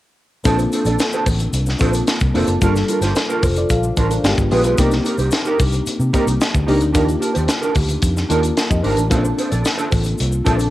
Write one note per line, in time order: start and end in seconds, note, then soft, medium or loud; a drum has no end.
0.44 0.65 A#1 medium
0.44 1.18 A#3 medium
0.44 1.18 C4 medium
0.44 0.63 D4 medium
0.44 1.19 D4 medium
0.44 1.19 F4 medium
0.44 1.19 A4 medium
0.44 0.59 A4 medium
0.44 0.58 C5 medium
0.44 kick loud
0.44 closed hi-hat medium
0.44 shaker medium
0.59 muted clean electric guitar stroke soft
0.59 closed hi-hat soft
0.59 shaker soft
0.72 0.87 D4 soft
0.72 0.86 A4 soft
0.72 0.86 C5 medium
0.72 closed hi-hat medium
0.72 shaker soft
0.85 0.95 A#1 medium
0.85 0.99 D4 soft
0.85 1.00 A4 medium
0.85 1.00 D5 medium
0.85 closed hi-hat soft
0.85 shaker soft
0.99 muted clean electric guitar stroke soft
0.99 snare loud
0.99 closed hi-hat medium
0.99 shaker medium
1.13 1.25 D4 medium
1.13 1.26 A4 medium
1.13 1.26 C5 medium
1.13 shaker medium
1.26 1.46 A1 medium
1.26 muted clean electric guitar stroke soft
1.26 kick medium
1.26 open hi-hat medium
1.26 shaker soft
1.39 muted clean electric guitar stroke soft
1.39 closed hi-hat medium
1.39 shaker soft
1.53 1.73 C2 medium
1.53 closed hi-hat medium
1.53 shaker medium
1.66 muted clean electric guitar stroke soft
1.66 snare soft
1.66 shaker soft
1.79 2.01 A#1 medium
1.79 2.17 A#3 medium
1.79 2.17 C4 medium
1.79 2.17 D4 medium
1.79 1.99 D4 medium
1.79 2.17 F4 medium
1.79 2.17 A4 medium
1.79 1.93 A4 medium
1.79 1.92 C5 medium
1.79 kick medium
1.79 closed hi-hat medium
1.79 shaker soft
1.93 muted clean electric guitar stroke soft
1.93 closed hi-hat soft
1.93 shaker soft
2.07 muted clean electric guitar stroke soft
2.07 snare loud
2.07 closed hi-hat medium
2.07 shaker medium
2.20 2.31 C2 medium
2.20 muted clean electric guitar stroke soft
2.20 kick medium
2.20 closed hi-hat soft
2.20 shaker soft
2.34 2.44 F1 medium
2.34 2.53 A#3 medium
2.34 2.53 C4 medium
2.34 2.53 D4 medium
2.34 2.53 F4 medium
2.34 2.48 A4 medium
2.34 2.53 A4 medium
2.34 2.47 C5 medium
2.34 open hi-hat medium
2.47 2.58 F#1 medium
2.47 muted clean electric guitar stroke soft
2.47 closed hi-hat medium
2.47 shaker medium
2.61 2.82 G1 loud
2.61 3.35 G3 medium
2.61 3.35 A#3 medium
2.61 2.80 D4 medium
2.61 3.35 D4 medium
2.61 3.36 F4 medium
2.61 2.76 F4 medium
2.61 3.36 A4 medium
2.61 2.75 A#4 medium
2.61 kick loud
2.61 closed hi-hat medium
2.61 shaker medium
2.76 muted clean electric guitar stroke soft
2.76 snare soft
2.76 shaker medium
2.88 3.03 D4 medium
2.88 3.02 F4 medium
2.88 3.02 A#4 medium
2.88 closed hi-hat medium
2.88 shaker soft
3.01 3.12 G1 loud
3.01 3.14 D4 medium
3.01 3.15 F4 medium
3.01 3.17 C5 medium
3.01 snare soft
3.01 closed hi-hat soft
3.01 shaker soft
3.15 muted clean electric guitar stroke soft
3.15 snare medium
3.15 closed hi-hat medium
3.15 shaker medium
3.29 3.43 D4 medium
3.29 3.43 F4 medium
3.29 3.44 A#4 medium
3.29 shaker soft
3.43 3.63 F1 medium
3.43 3.56 C5 medium
3.43 muted clean electric guitar stroke soft
3.43 kick loud
3.43 open hi-hat medium
3.43 shaker medium
3.56 3.70 F4 medium
3.56 3.70 D5 medium
3.56 muted clean electric guitar stroke soft
3.56 closed hi-hat medium
3.56 shaker soft
3.69 3.90 A#1 medium
3.69 3.97 A4 medium
3.69 3.96 F5 medium
3.69 kick medium
3.69 closed hi-hat medium
3.69 shaker medium
3.83 muted clean electric guitar stroke soft
3.83 shaker soft
3.97 4.17 A1 medium
3.97 4.15 D4 medium
3.97 4.10 F4 medium
3.97 4.11 F4 medium
3.97 4.09 A#4 medium
3.97 4.10 D5 medium
3.97 kick medium
3.97 closed hi-hat medium
3.97 shaker soft
4.10 4.23 D4 medium
4.10 4.36 A#4 medium
4.10 muted clean electric guitar stroke soft
4.10 closed hi-hat medium
4.10 shaker medium
4.23 4.34 G1 medium
4.23 4.46 G#3 medium
4.23 4.46 B3 medium
4.23 4.46 D4 medium
4.23 4.46 F4 medium
4.23 4.46 G4 medium
4.23 muted clean electric guitar stroke soft
4.23 snare medium
4.23 closed hi-hat medium
4.23 shaker medium
4.37 4.48 G#1 medium
4.37 muted clean electric guitar stroke soft
4.37 kick medium
4.37 shaker soft
4.51 4.64 A#1 medium
4.51 4.69 G#3 medium
4.51 4.69 B3 medium
4.51 4.70 D4 medium
4.51 4.65 F4 medium
4.51 4.70 F4 medium
4.51 4.70 G4 medium
4.51 4.64 G#4 medium
4.51 4.63 B4 medium
4.51 open hi-hat medium
4.64 4.74 B1 medium
4.64 4.77 F4 soft
4.64 4.78 G#4 soft
4.64 4.79 B4 medium
4.64 closed hi-hat medium
4.64 shaker soft
4.78 4.98 C2 loud
4.78 5.52 A#3 medium
4.78 5.52 C4 medium
4.78 5.52 D4 medium
4.78 4.96 D#4 medium
4.78 5.52 D#4 medium
4.78 4.91 G4 medium
4.78 5.52 G4 medium
4.78 4.90 A#4 medium
4.78 kick loud
4.78 closed hi-hat medium
4.78 shaker medium
4.91 muted clean electric guitar stroke soft
4.91 snare soft
4.91 closed hi-hat soft
4.91 shaker soft
5.04 5.19 D#4 medium
5.04 5.18 G4 medium
5.04 5.18 A#4 medium
5.04 closed hi-hat medium
5.04 shaker soft
5.18 5.28 C2 loud
5.18 5.31 D#4 soft
5.18 5.31 G4 medium
5.18 5.33 C5 medium
5.18 closed hi-hat soft
5.18 shaker soft
5.31 muted clean electric guitar stroke soft
5.31 snare medium
5.31 closed hi-hat medium
5.31 shaker medium
5.45 5.58 D#4 medium
5.45 5.59 G4 medium
5.45 5.60 A#4 medium
5.45 shaker medium
5.59 5.80 C2 medium
5.59 muted clean electric guitar stroke soft
5.59 kick medium
5.59 open hi-hat medium
5.59 shaker soft
5.72 muted clean electric guitar stroke soft
5.72 closed hi-hat medium
5.72 shaker soft
5.86 muted fingered electric bass stroke soft
5.86 closed hi-hat medium
5.86 shaker medium
5.99 6.10 C3 loud
5.99 muted clean electric guitar stroke soft
5.99 shaker medium
6.13 6.50 A#3 medium
6.13 6.50 C4 medium
6.13 6.50 D4 medium
6.13 6.32 D#4 medium
6.13 6.50 D#4 medium
6.13 6.27 G4 medium
6.13 6.51 G4 medium
6.13 6.25 A#4 medium
6.13 kick medium
6.13 closed hi-hat medium
6.13 shaker soft
6.27 6.37 C2 medium
6.27 muted clean electric guitar stroke soft
6.27 closed hi-hat medium
6.27 shaker soft
6.40 muted clean electric guitar stroke soft
6.40 snare loud
6.40 closed hi-hat medium
6.40 shaker medium
6.54 6.64 D2 medium
6.54 muted clean electric guitar stroke soft
6.54 kick medium
6.54 shaker soft
6.67 6.82 C#2 medium
6.67 6.86 A#3 medium
6.67 6.86 C4 medium
6.67 6.86 D4 medium
6.67 6.85 D#4 medium
6.67 6.86 D#4 medium
6.67 6.80 G4 medium
6.67 6.87 G4 medium
6.67 6.78 A#4 medium
6.67 open hi-hat medium
6.80 6.91 D2 medium
6.80 muted clean electric guitar stroke soft
6.80 closed hi-hat medium
6.80 shaker soft
6.93 7.15 D#2 medium
6.93 7.68 A#3 medium
6.93 7.12 D4 medium
6.93 7.68 D4 medium
6.93 7.69 D#4 medium
6.93 7.69 F4 medium
6.93 7.07 G4 medium
6.93 7.69 G4 medium
6.93 7.06 A#4 medium
6.93 kick loud
6.93 closed hi-hat medium
6.93 shaker medium
7.07 muted clean electric guitar stroke soft
7.07 closed hi-hat soft
7.07 shaker soft
7.19 7.35 D4 medium
7.19 7.34 G4 medium
7.19 7.34 A#4 medium
7.19 closed hi-hat medium
7.19 shaker soft
7.34 7.46 D#2 medium
7.34 7.46 D4 soft
7.34 7.46 G4 medium
7.34 7.48 C5 medium
7.34 closed hi-hat soft
7.34 shaker soft
7.47 muted clean electric guitar stroke soft
7.47 snare medium
7.47 closed hi-hat medium
7.47 shaker medium
7.61 7.74 D4 medium
7.61 7.75 G4 medium
7.61 7.75 A#4 medium
7.61 shaker soft
7.75 7.96 D2 medium
7.75 muted clean electric guitar stroke soft
7.75 kick medium
7.75 open hi-hat medium
7.75 shaker soft
7.89 muted clean electric guitar stroke soft
7.89 closed hi-hat medium
7.89 shaker soft
8.02 8.23 F2 medium
8.02 kick medium
8.02 closed hi-hat medium
8.02 shaker medium
8.16 muted clean electric guitar stroke soft
8.16 snare soft
8.16 shaker soft
8.29 8.50 D#2 medium
8.29 8.67 A#3 medium
8.29 8.48 D4 medium
8.29 8.57 D4 medium
8.29 8.57 D#4 medium
8.29 8.57 F4 medium
8.29 8.43 G4 medium
8.29 8.57 A#4 medium
8.29 8.42 A#4 medium
8.29 closed hi-hat medium
8.29 shaker soft
8.43 muted clean electric guitar stroke soft
8.43 closed hi-hat medium
8.43 shaker soft
8.56 muted clean electric guitar stroke soft
8.56 snare medium
8.56 closed hi-hat medium
8.56 shaker medium
8.70 8.81 F2 medium
8.70 8.83 G4 medium
8.70 8.83 D#5 medium
8.70 muted clean electric guitar stroke soft
8.70 kick medium
8.70 shaker soft
8.83 8.94 G#1 medium
8.83 9.02 D4 medium
8.83 8.97 D#4 medium
8.83 8.97 G4 medium
8.83 8.96 A#4 medium
8.83 8.97 C5 medium
8.83 open hi-hat medium
8.97 9.11 A1 medium
8.97 9.15 D4 soft
8.97 9.23 A#4 medium
8.97 muted clean electric guitar stroke soft
8.97 closed hi-hat medium
8.97 shaker soft
9.10 9.31 A#1 medium
9.10 9.84 A#3 medium
9.10 9.84 C4 medium
9.10 9.17 C#4 medium
9.10 9.29 D4 medium
9.10 9.85 F4 medium
9.10 9.85 A4 medium
9.10 9.25 A4 medium
9.10 9.24 C5 medium
9.10 kick loud
9.10 closed hi-hat medium
9.10 shaker medium
9.16 9.88 D4 medium
9.25 muted clean electric guitar stroke soft
9.25 shaker medium
9.38 9.51 D4 medium
9.38 9.51 A4 medium
9.38 9.50 C5 medium
9.38 closed hi-hat medium
9.38 shaker soft
9.51 9.62 A#1 medium
9.51 9.63 D4 soft
9.51 9.64 A4 medium
9.51 9.65 D5 medium
9.51 closed hi-hat soft
9.51 shaker soft
9.64 muted clean electric guitar stroke soft
9.64 snare medium
9.64 closed hi-hat medium
9.64 shaker medium
9.77 9.90 D4 medium
9.77 9.91 A4 medium
9.77 9.92 C5 medium
9.77 closed hi-hat soft
9.77 shaker soft
9.91 10.13 A1 medium
9.91 muted clean electric guitar stroke soft
9.91 kick medium
9.91 open hi-hat medium
9.91 shaker soft
10.04 muted clean electric guitar stroke soft
10.04 closed hi-hat medium
10.04 shaker soft
10.18 10.40 C2 medium
10.18 closed hi-hat medium
10.18 shaker medium
10.31 muted clean electric guitar stroke soft
10.31 shaker soft
10.45 10.67 A#1 medium
10.45 10.70 A#3 medium
10.45 10.70 C4 medium
10.45 10.64 D4 medium
10.45 10.70 D4 medium
10.45 10.70 F4 medium
10.45 10.58 A4 medium
10.45 10.70 A4 medium
10.45 10.57 C5 medium
10.45 kick medium
10.45 closed hi-hat medium
10.45 shaker soft
10.58 muted clean electric guitar stroke soft
10.58 closed hi-hat medium
10.58 shaker medium